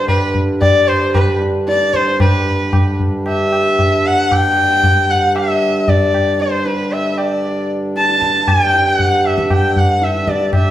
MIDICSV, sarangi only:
0, 0, Header, 1, 2, 480
1, 0, Start_track
1, 0, Tempo, 528169
1, 74, Time_signature, 4, 2, 24, 8
1, 4872, Tempo, 517241
1, 9833, End_track
2, 0, Start_track
2, 0, Title_t, "Sarangi"
2, 0, Program_c, 0, 110
2, 74, Note_on_c, 0, 71, 85
2, 299, Note_off_c, 0, 71, 0
2, 561, Note_on_c, 0, 74, 97
2, 799, Note_on_c, 0, 72, 88
2, 812, Note_off_c, 0, 74, 0
2, 1031, Note_off_c, 0, 72, 0
2, 1036, Note_on_c, 0, 71, 71
2, 1263, Note_off_c, 0, 71, 0
2, 1530, Note_on_c, 0, 74, 98
2, 1769, Note_on_c, 0, 72, 88
2, 1782, Note_off_c, 0, 74, 0
2, 2002, Note_off_c, 0, 72, 0
2, 2008, Note_on_c, 0, 71, 88
2, 2690, Note_off_c, 0, 71, 0
2, 2983, Note_on_c, 0, 76, 91
2, 3694, Note_on_c, 0, 78, 99
2, 3708, Note_off_c, 0, 76, 0
2, 3934, Note_on_c, 0, 79, 114
2, 3948, Note_off_c, 0, 78, 0
2, 4638, Note_on_c, 0, 78, 90
2, 4652, Note_off_c, 0, 79, 0
2, 4874, Note_off_c, 0, 78, 0
2, 4881, Note_on_c, 0, 76, 95
2, 5363, Note_on_c, 0, 74, 91
2, 5376, Note_off_c, 0, 76, 0
2, 5846, Note_on_c, 0, 72, 83
2, 5860, Note_off_c, 0, 74, 0
2, 6088, Note_on_c, 0, 71, 75
2, 6102, Note_off_c, 0, 72, 0
2, 6321, Note_on_c, 0, 76, 83
2, 6335, Note_off_c, 0, 71, 0
2, 6505, Note_off_c, 0, 76, 0
2, 6505, Note_on_c, 0, 76, 54
2, 6560, Note_on_c, 0, 74, 73
2, 6574, Note_off_c, 0, 76, 0
2, 7043, Note_off_c, 0, 74, 0
2, 7294, Note_on_c, 0, 81, 99
2, 7775, Note_on_c, 0, 79, 104
2, 7789, Note_off_c, 0, 81, 0
2, 8134, Note_on_c, 0, 78, 91
2, 8148, Note_off_c, 0, 79, 0
2, 8497, Note_on_c, 0, 76, 78
2, 8511, Note_off_c, 0, 78, 0
2, 8728, Note_off_c, 0, 76, 0
2, 8738, Note_on_c, 0, 79, 87
2, 8970, Note_on_c, 0, 78, 77
2, 8984, Note_off_c, 0, 79, 0
2, 9209, Note_on_c, 0, 76, 77
2, 9223, Note_off_c, 0, 78, 0
2, 9450, Note_on_c, 0, 74, 77
2, 9464, Note_off_c, 0, 76, 0
2, 9678, Note_off_c, 0, 74, 0
2, 9684, Note_on_c, 0, 76, 81
2, 9833, Note_off_c, 0, 76, 0
2, 9833, End_track
0, 0, End_of_file